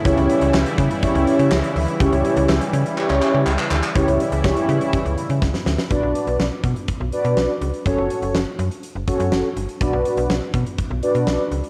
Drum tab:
HH |xxxx-xxxxxxx-xox|xxxx-xxx--------|xxxx-xxxxxxx----|x-xx--xxx-xx--xx|
CP |----x-------x---|----x---xxx-xxxx|----------------|----------------|
SD |----o-------o---|----o-----------|----o-------oooo|----o-------o---|
BD |o-----o-o-------|o---------------|o---o---o---o---|o-----o-o-------|

HH |x-xx--xxx-xx--xx|x-xx--xxx-xx--xx|
CP |----------------|----------------|
SD |----o-------o---|----o-------o---|
BD |o---------o-----|o-----o-o-------|